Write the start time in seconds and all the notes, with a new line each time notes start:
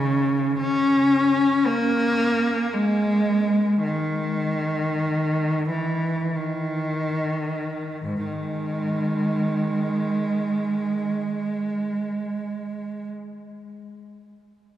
Already playing: C#3
0.60 C#4
1.67 A#3
2.73 G#3
3.84 D#3
5.70 E3
6.36 D#3
8.04 G#2
8.25 D#3 G#3